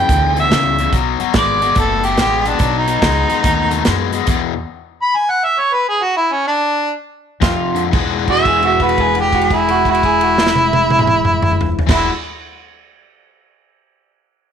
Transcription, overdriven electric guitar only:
0.08 E2 D3
0.35 E2 D3
0.51 E2 C#3
0.79 E2 C#3
0.93 B2 F#3
1.20 B2 F#3
1.34 B2 G#3
1.62 B2 G#3
1.76 B2 A3
2.04 B2 A3
2.18 B2 G#3
2.45 B2 G#3
2.60 B2 F#3
2.87 B2 F#3
3.01 B2 G#3
3.28 B2 G#3
3.42 B2 A3
3.70 B2 A3
3.85 B2 G#3
4.13 B2 G#3
4.27 E2 B2
7.41 F2 C3
7.74 F2 D3
7.91 E3 G#3 D4
7.96 F#4
11.87 E3 G#3 D4 F#4

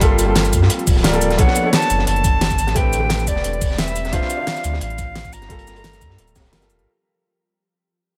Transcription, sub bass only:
Already playing: G1
0.53 G2
0.87 D1
1.39 B1
1.90 F#1
2.07 F#1
2.59 A1
3.27 E1
3.44 E1
4.13 D1
4.64 D2
4.81 A1
5.33 G1
6.01 G2
6.19 D1
6.53 G1
6.70 D1
6.79 A#1

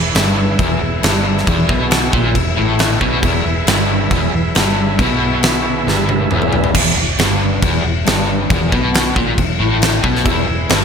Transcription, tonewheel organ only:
Already playing: B3 E4 G#4 E5
3.22 E4 G#4 B4 E5
10.25 B3 E4 G#4 E5

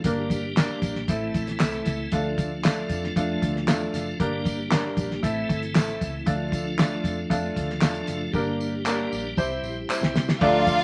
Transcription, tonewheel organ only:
0.04 G3 A#3 D4 G4
1.08 E3 A3 C4 E4
2.13 F3 A3 D4 F4
4.21 G3 A#3 G4
5.23 E3 A3 C4 E4
6.25 F3 D4 F4
8.32 G3 A#3 D4 G4
9.36 C4 E4
10.40 F3 A3 D4 F4

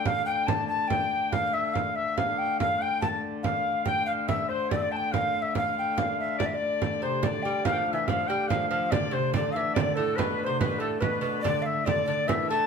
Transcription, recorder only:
0.06 F5
0.26 G5
0.47 A5
0.68 A5
0.88 G5
1.32 F5
1.53 E5
1.74 F5
1.95 E5
2.17 F5
2.38 G5
2.61 F5
2.82 G5
3.01 A5
3.43 F5
3.85 G5
4.06 F5
4.28 E5
4.49 C5
4.71 D5
4.92 A5
4.97 G5
5.13 F5
5.42 E5
5.57 F5
5.78 G5
5.98 F5
6.19 E5
6.41 D5
6.46 E5
6.54 D5
7.02 C5
7.24 D5
7.42 G5
7.64 F5
7.94 E5
8.09 F5
8.28 G5
8.49 F5
8.70 F5
8.91 D5
9.13 C5
9.35 D5
9.52 F5
9.56 E5
9.76 D5
9.96 A4
10.16 B4 C5
10.43 C5
10.60 B4
10.79 A4
11.01 B4
11.21 B4
11.41 D5
11.62 E5 F5
11.86 D5
12.05 D5
12.28 E5
12.49 A5

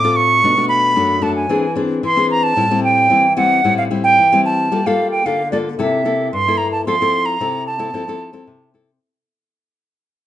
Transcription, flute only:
Already playing: D6
0.16 C#6
0.69 B5
1.23 A5
1.36 G#5
2.06 C6
2.31 A#5
2.43 A5
2.84 G5
3.37 F#5
3.78 F5
4.04 G5
4.45 A5
4.86 F5
5.11 G5
5.26 F5
5.52 D5
5.79 E5
6.33 C6
6.58 A#5
6.72 A5
6.86 C6
7.26 A#5
7.67 A5

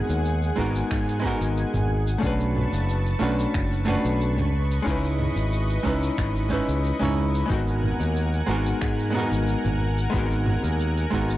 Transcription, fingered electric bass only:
0.09 D#2
0.58 G#1
0.91 G#2
1.41 G#1
1.74 G#1
2.23 B1
2.73 F#1
3.21 B1
3.55 F#1
4.05 B1
4.37 C#2
4.86 C#2
5.36 G#1
5.85 C#2
6.18 G#1
6.68 C#2
7.01 C#2
7.50 G#1
8.00 D#2
8.48 G#1
8.82 G#2
9.32 G#1
9.65 G#1
10.14 G#1
10.63 D#2
11.13 G#1

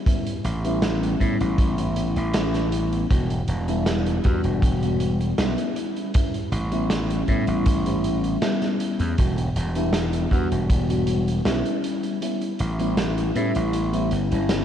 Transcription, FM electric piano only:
0.06 G3 B3 C#4 E4
0.64 G3 B3 C#4 E4
1.20 G3 B3 C#4 E4
1.78 G3 B3 C#4 E4
2.34 G3 B3 C#4 E4
3.09 G3 B3 D4 F#4
3.68 G3 B3 D4 E4
4.24 G3 B3 D4 F#4
4.82 G3 B3 D4 F#4
5.38 G3 B3 C#4 E4
6.14 G3 B3 C#4 E4
6.71 G3 B3 C#4 E4
7.28 G3 B3 C#4 E4
7.85 G3 B3 C#4 E4
8.41 G3 B3 C#4 E4
9.18 G3 B3 D4 F#4
9.75 G3 B3 D4 E4
10.31 G3 B3 D4 F#4
10.89 G3 B3 D4 F#4
11.45 G3 B3 C#4 E4
12.21 G3 B3 C#4 E4
12.79 G3 B3 C#4 E4
13.35 G3 B3 C#4 E4
13.93 G3 B3 C#4 E4
14.31 G3 B3 C#4 E4
14.49 G3 B3 C#4 E4

